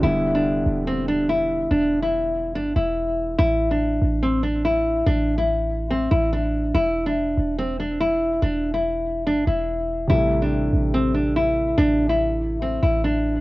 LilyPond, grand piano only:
\new Staff \with { instrumentName = "Grand piano" } { \clef bass \time 4/4 \key a \minor \tempo 4 = 143 <d g b e'>1~ | <d g b e'>1 | r1 | r1 |
r1 | r1 | <c g a e'>1~ | <c g a e'>1 | }